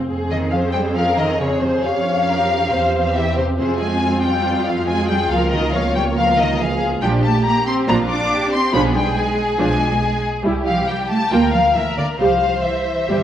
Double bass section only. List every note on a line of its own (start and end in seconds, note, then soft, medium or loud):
0.08 2.67 F2 medium
2.72 3.57 E2 soft
3.59 5.31 F2 medium
5.31 6.99 C#2 medium
7.02 7.38 A#1 medium
7.88 8.24 A#1 medium
8.74 9.10 B1 medium
9.60 9.95 B1 medium
10.45 10.81 C2 medium
11.31 11.68 D2 medium
12.20 12.57 C2 medium
13.09 13.23 G1 soft